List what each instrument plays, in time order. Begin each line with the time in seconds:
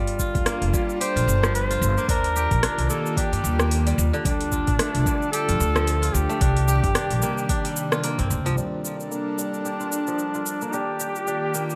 Already playing: upright bass G1, kora G3, analog synth pad G3 D4 A4 A#4, duduk F4
0.07 open hi-hat
0.19 kora F4, kick, shaker
0.35 upright bass D2, kick, open hi-hat, shaker
0.46 kora A#3, cross-stick, open hi-hat, shaker
0.62 upright bass F1, open hi-hat
0.74 kora G3, kick, shaker
0.90 shaker
1.01 kora G4, duduk C5, open hi-hat, shaker
1.16 upright bass A#1, kora F4, open hi-hat, shaker
1.27 upright bass G1, shaker
1.43 kora F3, cross-stick, shaker
1.55 duduk C5, open hi-hat, shaker
1.71 kora F4, open hi-hat, shaker
1.81 upright bass G1, shaker
1.98 kora A#3, shaker
2.09 upright bass D#2, analog synth pad D#3 A#3 F4 G4, kora D4, duduk A#4, kick, open hi-hat, shaker
2.24 open hi-hat
2.36 kora G4, shaker
2.51 upright bass A#1, kick, open hi-hat, shaker
2.63 kora D4, cross-stick, open hi-hat, shaker
2.78 upright bass C2, open hi-hat
2.90 kora A#3, duduk A4, shaker
3.06 shaker
3.17 kora D4, duduk G4, kick, open hi-hat, shaker
3.32 upright bass G2, kora G3, open hi-hat, shaker
3.44 upright bass D#2, shaker
3.60 kora A#3, cross-stick, shaker
3.71 open hi-hat, shaker
3.87 kora G3, open hi-hat, shaker
3.98 upright bass D#2, shaker
4.13 kora D3, shaker
4.25 upright bass D2, analog synth pad D3 A3 D4 F4, kora G3, duduk D4, kick, open hi-hat, shaker
4.41 open hi-hat
4.52 kora F4, kick, shaker
4.67 upright bass A1, kick, open hi-hat, shaker
4.79 kora A3, cross-stick, open hi-hat, shaker
4.95 upright bass C2, open hi-hat
5.06 kora G3, kick, shaker
5.22 shaker
5.32 kora G4, duduk A4, open hi-hat, shaker
5.49 upright bass F2, kora F4, open hi-hat, shaker
5.60 upright bass D2, shaker
5.75 kora F3, cross-stick, shaker
5.87 open hi-hat, shaker
6.02 kora F4, open hi-hat, shaker
6.13 upright bass D2, duduk G4, shaker
6.29 kora A3, shaker
6.41 upright bass C2, analog synth pad C3 D#3 G3, kora D4, kick, open hi-hat, shaker
6.57 open hi-hat
6.68 kora G4, shaker
6.84 upright bass G1, kick, open hi-hat, shaker
6.95 kora D4, cross-stick, open hi-hat, shaker
7.10 upright bass A#1, open hi-hat, shaker
7.22 kora A#3, shaker
7.38 shaker
7.49 kora D4, kick, open hi-hat, shaker
7.65 kora G3, open hi-hat, shaker
7.76 shaker
7.92 kora F4, cross-stick, shaker
8.04 kora A#3, open hi-hat, shaker
8.19 upright bass G1, kora C4, kick, open hi-hat, shaker
8.30 upright bass D#2, shaker
8.46 upright bass C2, kora F3, open hi-hat, shaker
8.57 kora G3, analog synth pad G3 D4 A4 A#4, shaker
8.84 kora F4, shaker
9.00 shaker
9.11 kora A#3, duduk D4, shaker
9.38 kora G3, shaker
9.54 shaker
9.65 kora G4, shaker
9.80 kora F4, shaker
9.92 shaker
10.07 kora F3, shaker
10.19 shaker
10.34 kora F4, shaker
10.46 shaker
10.62 kora A#3, shaker
10.73 analog synth pad D#3 A#3 F4 G4, kora D4, duduk G4, shaker
11.00 kora G4, shaker
11.16 shaker
11.27 kora D4, shaker
11.54 kora A#3, shaker
11.70 shaker